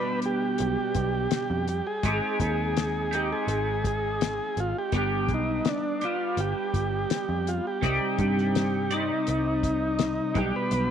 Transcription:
Already playing: B2 G3 B3 D4 G4 B4
0.22 G4, closed hi-hat
0.58 B1, closed hi-hat
0.95 B1, kick, closed hi-hat
1.31 snare, closed hi-hat
1.50 F2
1.68 G4, closed hi-hat
1.87 G#4
2.03 G#1 G#3 C4 D#4 G4, kick, closed hi-hat
2.40 D#2 G#4, kick, closed hi-hat
2.77 snare, closed hi-hat
3.11 G#3 C4 D#4 G4, closed hi-hat
3.32 G#4
3.47 G#1, closed hi-hat
3.84 G#4, kick, closed hi-hat
4.21 snare, closed hi-hat
4.57 G#1 F4, closed hi-hat
4.78 G4
4.92 G1 G3 B3 D4 G4, kick, closed hi-hat
4.97 G4
5.29 B1, kick, closed hi-hat
5.34 D#4
5.65 D4, snare, closed hi-hat
6.01 G3 B3 D4 F4 G4, closed hi-hat
6.37 G1 G4, closed hi-hat
6.74 G1, kick, closed hi-hat
7.10 snare, closed hi-hat
7.29 F2
7.47 F4, closed hi-hat
7.67 G4
7.82 C2 C3 G3 C4 D#4 G4 D5, kick, closed hi-hat
8.18 G2 G4, kick, closed hi-hat
8.38 snare
8.55 snare, closed hi-hat
8.91 C3 G3 C4 D#4 G4 D5, closed hi-hat
9.27 C2, closed hi-hat
9.63 kick, closed hi-hat
9.99 snare, closed hi-hat
10.35 B1 B2 G3 B3 D4 G4, kick, closed hi-hat
10.56 B4
10.71 B1, closed hi-hat

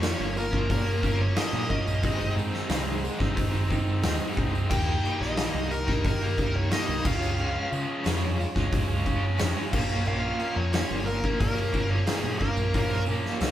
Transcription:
Already playing: F2 C#4 F4 A#4 C#5
0.01 A#2 F3 A#3 C#4 F4 A#4, snare, open hi-hat, tambourine
0.19 G1
0.35 C#4 F4 A#4, muted distorted electric guitar stroke, tambourine
0.51 F3 A#3 C#4, kick
0.69 A#2 F3 C#4 F4 A#4, kick, open hi-hat, tambourine
0.85 F3 A#3 C#4, tambourine
1.01 G1 A#2 F3 A#3 C#4 F4 A#4, kick, tambourine
1.21 C#5
1.34 A#2 F3 A#3 C#4 F4 A#4 D#5, snare, open hi-hat, tambourine
1.52 A#2 F3 A#3 C#4, tambourine
1.68 A#2 F3 A#3 F4 A#4 D#5, kick, tambourine
1.73 C#4
1.86 A#1 F3 A#3 C#4, tambourine
2.02 G#1 G#2 D#3 G#3 C4 D#4 G#4 C5, kick, open hi-hat, tambourine
2.18 G#3 C4 D#4, tambourine
2.36 G#2 D#3 G#3 C4 D#4 G#4, tambourine
2.54 snare, tambourine
2.69 C2 G#2 D#3 G#3 C4 D#4 G#4, snare, open hi-hat, tambourine
2.88 tambourine
3.03 G#2 D#3 G#3 C4 D#4 G#4, muted distorted electric guitar stroke, tambourine
3.19 G#1 G#3 C4 D#4, kick, snare, tambourine
3.35 G#3 C4 D#4 G#4, kick, open hi-hat, tambourine
3.53 G#1 G#3 C4 D#4, tambourine
3.69 D#3 G#3 C4 D#4 G#4, kick, tambourine
3.89 tambourine
4.03 D#2 G#2 D#3 G#3 C4 D#4 G#4, snare, open hi-hat, tambourine
4.19 G#3 C4 D#4, tambourine
4.36 C2 D#3 G#3 C4 D#4 G#4, kick, tambourine
4.53 G#3 C4 D#4, tambourine
4.70 D#2 D#3 G3 A#3 D#4 G4 A#4 G5, kick, crash
4.88 G3 A#3 D#4
5.02 D#3 G3 A#3 G4, tambourine
5.07 D#4
5.21 A#1 D#5, snare
5.37 D#3 G3 A#3 D#4 G4, snare, open hi-hat, tambourine
5.55 C2
5.70 D#3 A#3 D#4 G4 A#4, muted distorted electric guitar stroke, tambourine
5.87 G3 A#3 D#4, kick, snare
6.04 D#3 A#3 D#4 G4 A#4, kick, open hi-hat, tambourine
6.20 G3 A#3 D#4, tambourine
6.37 C2 D#3 G3 A#3 D#4 G4, kick, tambourine
6.56 C#5
6.70 D#3 G3 A#3 D#4 G4 D#5, snare, open hi-hat, tambourine
6.87 C2 G3 A#3 D#4
7.04 C#2 C#3 F3 G#3 C#4 F4 G#4 C#5 F5, kick, tambourine, crash
7.20 F3 G#3 C#4, tambourine
7.37 C#3 F3 G#3 C#4 F4
7.54 F3 G#3 C#4
7.71 C#3 F3 G#3 F4, tambourine
7.75 C#4
8.04 F2 C#3 F3 G#3 C#4 F4, snare, open hi-hat, tambourine
8.38 G#3 C#4 F4, muted distorted electric guitar stroke, tambourine
8.55 C#2 F3 G#3 C#4, kick, snare, tambourine
8.71 F3 G#3 C#4 F4, kick, open hi-hat, tambourine
8.88 C#2 F3 G#3 C#4, tambourine
9.04 C#3 F3 G#3 C#4 F4, kick, tambourine
9.39 F2 C#3 F3 G#3 C#4 F4, snare, open hi-hat, tambourine
9.56 F3 G#3 C#4
9.72 A#1 A#2 F3 A#3 C#4 F4 A#4 C#5, kick, tambourine, crash
9.76 C#4
9.89 F3 A#3 C#4, tambourine
10.05 A#1 A#2 F3 A#3 C#4 F4 F5
10.22 F3 A#3 C#4
10.39 A#2 F3 A#3 C#4 F4, tambourine
10.56 F2 C#5
10.72 A#2 F3 A#3 C#4 F4, snare, open hi-hat, tambourine
10.90 G1, tambourine
11.06 A#3 C#4 F4 A#4, muted distorted electric guitar stroke, tambourine
11.23 F3 A#3 C#4, kick, tambourine
11.39 A#2 F3 A#3 C#4 F4 A#4, kick, open hi-hat, tambourine
11.57 F3 A#3 C#4, tambourine
11.73 G1 A#2 F3 A#3 F4, kick, tambourine
11.77 C#4
11.90 C#5
12.06 A#2 F3 A#3 F4 G#4, snare, open hi-hat, tambourine
12.11 C#4
12.23 A#2 F3 A#3 C#4, tambourine
12.39 A#2 F3 F4 A#4, kick, tambourine
12.43 A#3 C#4
12.57 A#1 A#3 C#4, tambourine
12.62 F3
12.73 A#1 A#2 F3 C#4 F4 A#4 C#5, kick, open hi-hat, tambourine
12.78 A#3 C#4
12.90 A#3 C#4, tambourine
12.95 F3
13.06 A#2 F3 A#3 F4, tambourine
13.11 C#4
13.24 snare, tambourine
13.41 C#2 A#2 F3 A#3 C#4 F4, snare, open hi-hat, tambourine

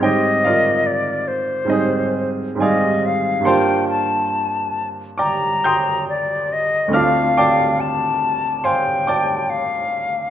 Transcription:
Already playing: G#2
0.00 G3 C4 D#4 G4 C5 D#5 G5
0.44 F4 A#4 D5 F5
0.86 D5
1.28 C5
1.65 G#2 G3 C4
1.69 D#4 G#4 C5 D#5
2.55 G#2 G3 C4
2.60 D#4 G#4 D5 D#5 F5 G#5
3.05 F5
3.40 G2 G3 A#3
3.45 D4 F4 C5 F5 G5 A5 C6
3.89 A5
5.18 D5 G5 A#5 D6
5.64 G5 C6 D#6 G6
6.09 D5
6.53 D#5
6.88 D2 A3 C4
6.93 D4 F4 F5 A5 D6 F6
7.37 D5 G5 A5 D6
7.80 A5
8.64 C5 F5 G5 G#5 C6
9.07 D5 G5 A5 D6
9.50 F5

